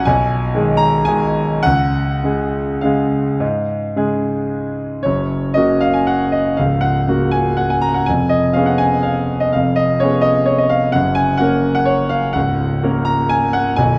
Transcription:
0.00 0.10 A#1 medium
0.00 0.11 F#3 medium
0.00 0.11 C#4 medium
0.00 0.11 F#4 medium
0.00 0.10 F#5 medium
0.00 0.05 G#5 loud
0.00 0.10 A#5 medium
0.00 0.11 C#6 loud
0.05 0.53 B1 medium
0.05 0.79 G#5 medium
0.54 1.03 D#3 medium
0.54 1.04 G#3 medium
0.54 1.04 G#4 medium
0.77 1.06 A#5 loud
1.05 1.61 D#3 soft
1.05 1.61 G#3 soft
1.05 1.62 G#4 medium
1.05 1.64 G#5 medium
1.63 2.22 C#2 medium
1.63 2.82 F#5 loud
2.24 2.79 C#3 soft
2.24 2.80 G#3 soft
2.24 2.80 G#4 medium
2.81 3.37 C#3 soft
2.81 3.37 G#3 soft
2.81 3.37 G#4 medium
2.81 4.51 F5 medium
3.40 3.94 G#2 medium
3.96 5.01 C#3 medium
3.96 5.01 G#3 soft
3.96 5.01 G#4 medium
5.03 5.54 F#1 soft
5.03 5.54 F#2 medium
5.03 5.55 C#5 medium
5.54 6.55 C#3 soft
5.54 6.55 A#3 soft
5.54 6.55 F#4 soft
5.54 5.82 D#5 medium
5.81 5.95 F5 medium
5.94 6.08 G#5 medium
6.07 6.33 F#5 medium
6.32 6.57 D#5 medium
6.57 7.07 C#1 soft
6.57 7.07 C#2 medium
6.57 6.82 F5 medium
6.81 7.32 F#5 medium
7.08 8.04 C#3 soft
7.08 8.04 A#3 soft
7.08 8.04 F#4 soft
7.31 7.58 G#5 medium
7.57 7.71 F#5 medium
7.70 7.83 G#5 medium
7.81 7.95 A#5 medium
7.94 8.07 F#5 medium
8.06 8.55 F1 soft
8.06 8.55 F2 medium
8.06 8.30 G#5 medium
8.29 8.55 D#5 medium
8.53 9.51 B3 soft
8.53 9.51 C#4 soft
8.53 9.51 G#4 soft
8.53 8.67 F5 medium
8.66 8.80 F#5 medium
8.78 9.04 G#5 medium
9.03 9.41 F5 medium
9.40 9.53 D#5 medium
9.53 10.00 F1 medium
9.53 9.99 F2 medium
9.53 9.77 F5 medium
9.76 10.00 D#5 medium
10.00 10.91 B3 soft
10.00 10.91 C#4 soft
10.00 10.91 G#4 soft
10.00 10.23 C#5 medium
10.21 10.46 D#5 medium
10.46 10.58 C#5 medium
10.58 10.71 D#5 medium
10.69 10.93 F5 medium
10.92 11.39 F#1 soft
10.92 11.39 F#2 medium
10.92 11.16 F#5 medium
11.15 11.39 G#5 medium
11.37 12.31 A#3 soft
11.37 12.31 C#4 soft
11.37 12.31 A#4 soft
11.37 11.73 F#5 medium
11.75 11.87 F#5 medium
11.85 12.11 C#5 medium
12.09 12.34 F5 medium
12.33 12.81 C#1 medium
12.33 12.82 C#2 medium
12.33 13.06 F#5 medium
12.83 13.75 A#3 soft
12.83 13.75 C#4 soft
12.83 13.75 A#4 medium
13.05 13.30 A#5 medium
13.29 13.54 G#5 medium
13.53 13.78 F#5 medium
13.76 13.99 B0 medium
13.76 13.99 B1 medium
13.76 13.99 G#5 medium

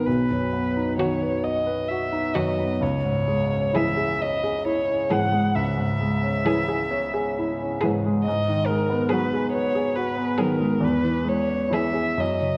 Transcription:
0.06 2.77 B1 soft
0.06 0.97 B4 medium
0.31 0.67 F#2 soft
0.53 0.89 B3 soft
0.77 1.12 D#4 soft
0.98 1.32 D#3 soft
0.98 1.35 F#4 soft
0.98 1.33 F#4 soft
0.98 1.45 C#5 medium
1.22 1.57 B4 soft
1.44 1.80 D#5 soft
1.44 1.90 D#5 medium
1.66 2.03 B4 soft
1.88 2.26 F#4 soft
1.88 2.36 E5 medium
2.12 2.49 D#4 soft
2.34 2.72 F#2 soft
2.34 2.69 D#3 soft
2.34 2.69 F#4 soft
2.34 2.85 D#5 medium
2.59 2.81 B3 soft
2.81 5.51 C#2 soft
2.81 3.78 C#5 medium
3.04 3.41 G#2 soft
3.28 3.65 G#3 soft
3.51 3.88 C#4 soft
3.73 4.09 E3 soft
3.73 4.11 E4 soft
3.73 4.09 G#4 soft
3.73 4.23 E5 medium
3.97 4.34 G#4 soft
4.20 4.57 C#5 soft
4.20 4.67 D#5 medium
4.44 4.80 G#4 soft
4.65 5.01 E4 soft
4.65 5.13 C#5 medium
4.90 5.25 C#4 soft
5.10 5.46 G#2 soft
5.10 5.44 E3 soft
5.10 5.44 G#4 soft
5.10 5.57 F#5 medium
5.32 5.68 G#3 soft
5.55 8.22 C#2 soft
5.55 7.82 E5 medium
5.78 6.14 G#2 soft
6.01 6.37 G#3 soft
6.22 6.58 C#4 soft
6.45 6.79 E3 soft
6.45 6.82 E4 soft
6.45 6.79 G#4 soft
6.68 7.05 G#4 soft
6.91 7.28 C#5 soft
7.14 7.50 G#4 soft
7.39 7.74 E4 soft
7.61 7.96 C#4 soft
7.81 8.18 G#2 soft
7.81 8.15 E3 soft
7.81 8.14 G#4 soft
8.06 8.27 G#3 soft
8.25 10.80 G#2 soft
8.25 8.68 D#5 medium
8.48 8.81 D#3 soft
8.66 9.03 G#3 soft
8.66 9.11 A#4 medium
8.90 9.23 B3 soft
9.09 9.41 F#3 soft
9.09 9.45 F#4 soft
9.09 9.41 G#4 soft
9.09 9.52 B4 medium
9.34 9.67 G#4 soft
9.53 9.88 B4 soft
9.53 9.97 C#5 medium
9.75 10.09 G#4 soft
9.96 10.31 F#4 soft
9.96 10.40 B4 medium
10.17 10.51 B3 soft
10.38 10.74 D#3 soft
10.38 10.71 F#3 soft
10.38 10.71 G#4 soft
10.38 10.85 A#4 medium
10.60 10.82 G#3 soft
10.80 12.15 E2 soft
10.80 11.30 B4 medium
11.04 11.40 E3 soft
11.24 11.62 G#3 soft
11.29 11.75 C#5 medium
11.47 11.86 C#4 soft
11.70 12.07 E3 soft
11.70 12.09 E4 soft
11.70 12.08 G#4 soft
11.70 12.22 E5 medium
11.94 12.19 G#4 soft
12.18 12.57 F#2 soft
12.18 12.57 D#5 medium
12.42 12.57 C#3 soft

